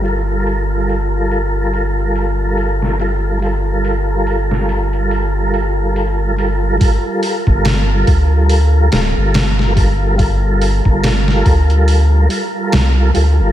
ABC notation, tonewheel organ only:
X:1
M:4/4
L:1/8
Q:"Swing 16ths" 1/4=71
K:Gm
V:1 name="Tonewheel organ"
[G,FAB]6- [G,FAB] [G,FAB] | [G,FAB]6- [G,FAB] [G,FAB] | [G,FAB]4- [G,FAB] [G,FAB]2 [G,FAB] | [G,FAB]4- [G,FAB] [G,FAB]2 [G,FAB] |]